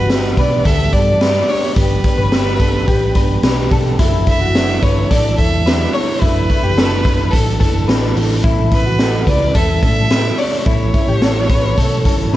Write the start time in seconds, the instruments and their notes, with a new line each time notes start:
Already playing: picked electric bass G1, clean electric guitar F#4, violin B4
0.09 steel-string acoustic guitar G3 B3 D4 G4, snare, closed hi-hat
0.37 picked electric bass B1, steel-string acoustic guitar B3 D4 G4, clean electric guitar B4, violin D5, kick, closed hi-hat
0.65 picked electric bass D2, steel-string acoustic guitar G3 B3 D4 G4, clean electric guitar A4, violin E5, kick, closed hi-hat
0.93 picked electric bass G2, steel-string acoustic guitar B3 D4 G4, violin D5, kick, closed hi-hat
1.21 steel-string acoustic guitar G3 B3 D4 G4, clean electric guitar B4, snare, closed hi-hat
1.48 steel-string acoustic guitar B3 D4 G4, violin C#5, clean electric guitar D5, open hi-hat
1.76 picked electric bass G1, steel-string acoustic guitar G3 B3 D4 G4, clean electric guitar G4, violin B4, kick, closed hi-hat
2.04 steel-string acoustic guitar B3 D4 G4, kick, closed hi-hat
2.18 picked electric bass G1, clean electric guitar B4
2.32 steel-string acoustic guitar G3 B3 D4 G4, clean electric guitar B4, snare, closed hi-hat
2.60 steel-string acoustic guitar B3 D4 G4, clean electric guitar A4, kick, closed hi-hat
2.87 picked electric bass A1, steel-string acoustic guitar G3 B3 D4 G4, clean electric guitar G4, kick, closed hi-hat
3.15 picked electric bass G1, steel-string acoustic guitar B3 D4 G4, clean electric guitar B4, kick, closed hi-hat
3.43 picked electric bass B1, steel-string acoustic guitar G3 B3 D4 G4, clean electric guitar B4, snare, closed hi-hat
3.71 picked electric bass B1, steel-string acoustic guitar B3 D4 G4, clean electric guitar A4, kick, closed hi-hat
3.99 picked electric bass F#1, steel-string acoustic guitar F#3 D4 E4 A4, clean electric guitar E4, kick, closed hi-hat
4.27 steel-string acoustic guitar D4 E4 A4, violin E5, kick, closed hi-hat
4.41 clean electric guitar F#4
4.55 steel-string acoustic guitar F#3 D4 E4 A4, snare, closed hi-hat
4.82 picked electric bass G1, steel-string acoustic guitar D4 E4 A4, clean electric guitar B4, violin C#5, kick, closed hi-hat
5.10 picked electric bass A1, steel-string acoustic guitar F#3 D4 E4 A4, clean electric guitar A4, violin D5, kick, closed hi-hat
5.37 picked electric bass E2, steel-string acoustic guitar D4 E4 A4, violin E5, kick, closed hi-hat
5.66 steel-string acoustic guitar F#3 D4 E4 A4, clean electric guitar B4, snare, closed hi-hat
5.93 steel-string acoustic guitar D4 E4 A4, violin C#5, clean electric guitar C#5, open hi-hat
6.20 picked electric bass F#1, steel-string acoustic guitar F#3 D4 E4 A4, clean electric guitar E4, violin B4, kick, closed hi-hat
6.49 steel-string acoustic guitar D4 E4 A4, kick, closed hi-hat
6.63 picked electric bass F#1, clean electric guitar G4
6.77 steel-string acoustic guitar F#3 D4 E4 A4, clean electric guitar A4, snare, closed hi-hat
7.04 steel-string acoustic guitar D4 E4 A4, clean electric guitar B4, kick, closed hi-hat
7.31 picked electric bass A1, steel-string acoustic guitar F#3 D4 E4, violin A4, clean electric guitar A4, kick, closed hi-hat
7.35 steel-string acoustic guitar A4
7.59 picked electric bass F#1, steel-string acoustic guitar D4 E4 A4, violin A4, clean electric guitar A4, kick, closed hi-hat
7.88 picked electric bass A1, steel-string acoustic guitar F#3 D4 E4 A4, clean electric guitar B4, snare, closed hi-hat
8.15 picked electric bass A1, steel-string acoustic guitar D4 E4 A4, clean electric guitar A4, open hi-hat
8.43 picked electric bass A1, steel-string acoustic guitar A3 C#4 E4 A4, clean electric guitar E4, kick, closed hi-hat
8.71 steel-string acoustic guitar C#4 E4 A4, violin B4, kick, closed hi-hat
8.86 clean electric guitar F#4
8.98 steel-string acoustic guitar A3 C#4 E4 A4, snare, closed hi-hat
9.27 picked electric bass C#2, steel-string acoustic guitar C#4 E4 A4, clean electric guitar B4, violin D5, kick, closed hi-hat
9.54 picked electric bass E2, steel-string acoustic guitar A3 C#4 E4 A4, clean electric guitar A4, violin E5, kick, closed hi-hat
9.82 picked electric bass A2, steel-string acoustic guitar C#4 E4 A4, violin E5, kick, closed hi-hat
10.10 steel-string acoustic guitar A3 C#4 E4 A4, clean electric guitar B4, snare, closed hi-hat
10.37 steel-string acoustic guitar C#4 E4 A4, clean electric guitar C#5, violin D5, open hi-hat
10.59 violin D5
10.65 picked electric bass A1, steel-string acoustic guitar A3 C#4 E4 A4, clean electric guitar E4, violin C#5, kick, closed hi-hat
10.93 steel-string acoustic guitar C#4 E4 A4, kick, closed hi-hat
11.08 picked electric bass A1, clean electric guitar G4
11.20 steel-string acoustic guitar A3 C#4 E4 A4, clean electric guitar A4, snare, closed hi-hat
11.47 steel-string acoustic guitar C#4 E4 A4, clean electric guitar B4, kick, closed hi-hat
11.77 picked electric bass B1, steel-string acoustic guitar A3 C#4 E4 A4, clean electric guitar A4, kick, closed hi-hat
12.05 picked electric bass G1, steel-string acoustic guitar C#4 E4 A4, clean electric guitar A4, kick, closed hi-hat
12.33 picked electric bass A1, steel-string acoustic guitar A3 C#4